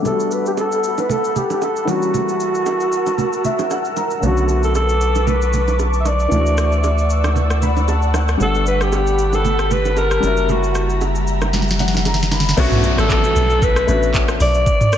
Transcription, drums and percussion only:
0.05 low conga, shaker
0.20 shaker
0.31 shaker
0.46 shaker
0.57 high bongo, shaker
0.72 shaker
0.84 shaker
0.98 low bongo, shaker
1.09 low conga, shaker
1.24 shaker
1.36 low conga, shaker
1.50 low bongo, shaker
1.62 high bongo, shaker
1.76 shaker
1.88 low bongo, shaker
2.02 shaker
2.14 low conga, shaker
2.29 shaker
2.40 shaker
2.55 shaker
2.66 high bongo, shaker
2.80 shaker
2.92 shaker
3.06 low bongo, shaker
3.18 low conga, shaker
3.33 shaker
3.44 low conga, shaker
3.59 high bongo, low bongo, shaker
3.70 high bongo, shaker
3.85 shaker
3.97 low bongo, shaker
4.11 shaker
4.23 low conga, shaker
4.37 shaker
4.49 shaker
4.63 shaker
4.75 high bongo, shaker
4.89 shaker
5.01 shaker
5.15 low bongo, shaker
5.27 low conga, shaker
5.42 shaker
5.53 low conga, shaker
5.68 low bongo, shaker
5.79 high bongo, shaker
5.93 shaker
6.05 low bongo, shaker
6.19 shaker
6.32 low conga, shaker
6.46 shaker
6.57 cross-stick, shaker
6.72 shaker
6.84 high bongo, shaker
6.98 shaker
7.10 shaker
7.24 cross-stick, low bongo, shaker
7.36 low conga, shaker
7.50 cross-stick, shaker
7.62 low conga, shaker
7.77 low bongo, shaker
7.88 high bongo, shaker
8.02 shaker
8.14 cross-stick, low bongo, shaker
8.28 cross-stick, shaker
8.40 low conga, shaker
8.55 shaker
8.66 shaker
8.81 cross-stick, shaker
8.92 high bongo, shaker
9.07 shaker
9.18 shaker
9.33 low bongo, shaker
9.45 low conga, shaker
9.59 cross-stick, shaker
9.71 low conga, shaker
9.85 low bongo, shaker
9.97 high bongo, shaker
10.11 cross-stick, shaker
10.23 low bongo, shaker
10.37 shaker
10.49 low conga, shaker
10.63 shaker
10.75 cross-stick, shaker
10.90 shaker
11.01 high bongo, shaker
11.15 shaker
11.27 shaker
11.41 cross-stick, low bongo, shaker
11.53 snare, low conga, shaker
11.62 snare
11.68 snare, shaker
11.79 snare, low conga, shaker
11.88 snare
11.94 snare, low bongo, shaker
12.05 snare, high bongo, shaker
12.14 snare
12.20 snare, shaker
12.31 snare, low bongo, shaker
12.40 snare
12.45 snare, shaker
12.57 kick, crash, shaker
12.72 mid tom, shaker
12.84 shaker
12.98 cross-stick, shaker
13.10 kick, clap, shaker
13.24 shaker
13.36 shaker
13.50 shaker
13.62 kick, shaker
13.76 cross-stick, shaker
13.88 shaker
14.03 shaker
14.14 kick, clap, shaker
14.28 cross-stick, shaker
14.40 open hi-hat, shaker
14.54 shaker
14.66 kick, shaker
14.81 mid tom, shaker
14.92 cross-stick, shaker

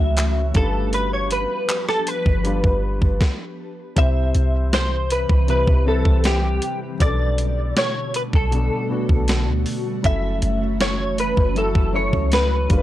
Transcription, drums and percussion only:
0.17 clap, closed hi-hat
0.54 kick, closed hi-hat
0.93 closed hi-hat
1.31 closed hi-hat
1.69 clap, closed hi-hat
1.89 cross-stick
2.07 closed hi-hat
2.26 kick
2.45 closed hi-hat
2.64 kick
3.02 kick
3.21 kick, snare
3.97 kick, closed hi-hat
4.35 closed hi-hat
4.73 snare, closed hi-hat
5.10 closed hi-hat
5.29 kick
5.48 closed hi-hat
5.67 kick
6.05 kick
6.24 snare, closed hi-hat
6.62 closed hi-hat
7.00 kick, closed hi-hat
7.38 closed hi-hat
7.77 snare, closed hi-hat
8.14 closed hi-hat
8.33 kick
8.52 closed hi-hat
9.09 kick
9.28 snare, closed hi-hat
9.66 open hi-hat
10.04 kick, closed hi-hat
10.42 closed hi-hat
10.81 snare, closed hi-hat
11.18 closed hi-hat
11.37 kick
11.56 closed hi-hat
11.75 kick
12.13 kick
12.32 snare, closed hi-hat
12.70 kick, closed hi-hat

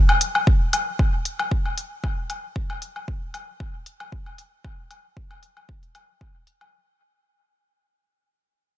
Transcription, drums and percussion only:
0.09 low woodblock
0.21 closed hi-hat
0.35 low woodblock
0.47 kick
0.73 closed hi-hat, low woodblock
0.99 kick, low woodblock
1.25 closed hi-hat
1.39 low woodblock
1.51 kick
1.66 low woodblock
1.78 closed hi-hat
2.04 kick, low woodblock
2.30 closed hi-hat, low woodblock
2.56 kick
2.70 low woodblock
2.82 closed hi-hat
2.96 low woodblock
3.08 kick
3.34 closed hi-hat, low woodblock
3.60 kick, low woodblock
3.86 closed hi-hat
4.00 low woodblock
4.12 kick
4.26 low woodblock
4.38 closed hi-hat
4.64 kick, low woodblock
4.91 closed hi-hat, low woodblock
5.17 kick
5.31 low woodblock
5.43 closed hi-hat
5.57 low woodblock
5.69 kick
5.83 closed hi-hat
5.95 closed hi-hat, low woodblock
6.21 kick, low woodblock
6.47 closed hi-hat
6.61 low woodblock

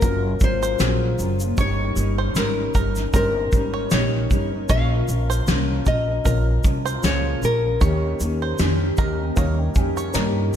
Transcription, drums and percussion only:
0.02 kick, shaker
0.40 kick, shaker
0.63 shaker
0.80 snare, shaker
1.19 shaker
1.40 shaker
1.58 kick, shaker
1.96 shaker
2.36 snare, shaker
2.75 kick, shaker
2.95 snare, shaker
3.14 kick, shaker
3.52 kick, shaker
3.91 snare, shaker
4.31 kick, shaker
4.69 kick, shaker
5.08 shaker
5.31 shaker
5.47 snare, shaker
5.86 kick, shaker
6.26 kick, shaker
6.64 kick, shaker
6.86 shaker
7.03 snare, shaker
7.43 shaker
7.81 kick, shaker
8.20 shaker
8.59 snare, shaker
8.97 kick, shaker
9.37 kick, shaker
9.75 kick, shaker
9.97 shaker
10.14 snare, shaker

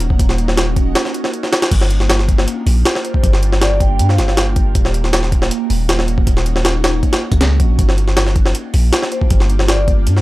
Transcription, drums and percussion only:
0.00 closed hi-hat
0.10 kick
0.19 kick, closed hi-hat
0.29 snare
0.38 closed hi-hat
0.48 snare
0.57 snare, closed hi-hat
0.76 kick, closed hi-hat
0.95 snare, closed hi-hat
1.05 snare
1.14 closed hi-hat
1.24 snare
1.34 closed hi-hat
1.43 snare
1.53 snare, closed hi-hat
1.62 snare, closed hi-hat
1.71 kick, closed hi-hat, crash
1.81 snare
1.90 closed hi-hat
2.00 snare
2.10 snare, closed hi-hat
2.19 snare
2.29 kick, closed hi-hat
2.38 snare
2.48 closed hi-hat
2.67 open hi-hat
2.85 snare, closed hi-hat
2.95 snare
3.05 closed hi-hat
3.14 kick
3.23 kick, closed hi-hat
3.33 snare
3.43 closed hi-hat
3.52 snare
3.61 snare, closed hi-hat
3.80 kick, closed hi-hat
3.99 closed hi-hat
4.09 snare
4.18 snare, closed hi-hat
4.28 snare
4.37 snare, closed hi-hat
4.56 kick, closed hi-hat
4.75 kick, closed hi-hat
4.85 snare
4.94 closed hi-hat
5.04 snare
5.13 snare, closed hi-hat
5.23 snare
5.32 kick, closed hi-hat
5.42 snare
5.51 closed hi-hat
5.70 open hi-hat
5.89 snare, closed hi-hat
5.99 snare
6.08 closed hi-hat
6.18 kick
6.27 kick, closed hi-hat
6.37 snare
6.46 closed hi-hat
6.56 snare
6.65 snare, closed hi-hat
6.84 snare, closed hi-hat
7.03 kick, closed hi-hat
7.13 snare, closed hi-hat
7.32 kick, closed hi-hat
7.41 snare, closed hi-hat
7.60 kick, closed hi-hat
7.79 kick, closed hi-hat
7.89 snare
7.98 closed hi-hat
8.08 snare
8.17 snare, closed hi-hat
8.27 snare
8.36 kick, closed hi-hat
8.46 snare
8.55 closed hi-hat
8.74 open hi-hat
8.93 snare, closed hi-hat
9.02 snare
9.12 closed hi-hat
9.21 kick
9.30 kick, closed hi-hat
9.40 snare
9.50 closed hi-hat
9.59 snare
9.68 snare, closed hi-hat
9.88 kick, closed hi-hat
10.07 closed hi-hat
10.17 snare

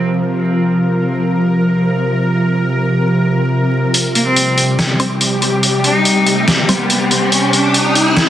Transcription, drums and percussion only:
3.94 closed hi-hat
4.15 closed hi-hat
4.36 closed hi-hat
4.58 closed hi-hat
4.79 snare, closed hi-hat
5.00 closed hi-hat
5.21 closed hi-hat
5.42 closed hi-hat
5.63 closed hi-hat
5.84 closed hi-hat
6.05 closed hi-hat
6.26 closed hi-hat
6.48 snare, closed hi-hat
6.69 closed hi-hat
6.90 closed hi-hat
7.11 closed hi-hat
7.32 closed hi-hat
7.53 closed hi-hat
7.74 closed hi-hat
7.95 closed hi-hat
8.16 snare, closed hi-hat

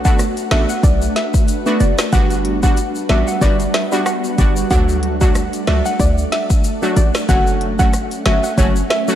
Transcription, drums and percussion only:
0.05 kick, shaker
0.19 cross-stick, closed hi-hat, shaker
0.37 closed hi-hat, shaker
0.51 cross-stick, snare, closed hi-hat
0.69 shaker
0.83 kick, closed hi-hat, shaker
1.02 shaker
1.16 snare, closed hi-hat
1.34 kick, shaker
1.48 closed hi-hat, shaker
1.66 shaker
1.80 closed hi-hat, shaker
1.99 cross-stick, snare, shaker
2.13 kick, closed hi-hat, shaker
2.31 closed hi-hat, shaker
2.45 closed hi-hat
2.63 kick, shaker
2.77 closed hi-hat, shaker
2.95 shaker
3.09 cross-stick, snare, closed hi-hat
3.27 shaker
3.41 kick, closed hi-hat, shaker
3.60 closed hi-hat, shaker
3.74 cross-stick, snare, closed hi-hat
3.92 shaker
4.06 cross-stick, closed hi-hat, shaker
4.24 shaker
4.38 kick, closed hi-hat, shaker
4.57 shaker
4.71 kick, closed hi-hat, shaker
4.89 shaker
5.03 closed hi-hat
5.21 kick, shaker
5.35 cross-stick, closed hi-hat, shaker
5.53 closed hi-hat, shaker
5.67 cross-stick, snare, closed hi-hat
5.86 shaker
6.00 kick, closed hi-hat, shaker
6.18 shaker
6.32 snare, closed hi-hat
6.50 kick, shaker
6.64 closed hi-hat, shaker
6.82 shaker
6.97 closed hi-hat, shaker
7.15 cross-stick, snare, shaker
7.29 kick, closed hi-hat, shaker
7.47 shaker
7.61 closed hi-hat
7.79 kick, shaker
7.93 cross-stick, closed hi-hat, shaker
8.11 closed hi-hat, shaker
8.26 cross-stick, snare, closed hi-hat
8.44 shaker
8.58 kick, closed hi-hat, shaker
8.76 shaker
8.90 cross-stick, snare, closed hi-hat
9.08 shaker

